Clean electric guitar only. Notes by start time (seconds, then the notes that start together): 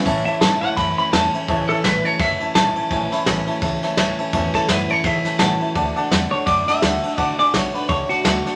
0.25 E5
0.41 A5
0.61 F#5
0.77 B5
0.98 B5
1.13 A5
1.69 A4
1.84 B4
2.05 C#5
2.20 E5
2.55 A5
4.55 A4
4.70 B4
4.91 C#5
5.05 E5
5.39 A5
6.31 C#5
6.46 D5
6.68 E5
7.20 D5
7.39 D5
7.53 C#5
7.74 B4
7.89 C#5
8.09 F#4